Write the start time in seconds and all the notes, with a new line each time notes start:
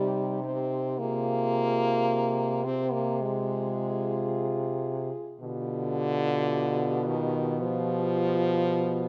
Already playing: C3 G3 D#4 G4
0.44 C4
0.99 C3 A#3 F4 G#4
2.65 C4
2.92 A#3
3.21 G#3 F4 G#4
5.41 B2 D3 G4
5.46 F4
7.07 D#3
7.60 F3 F4 G4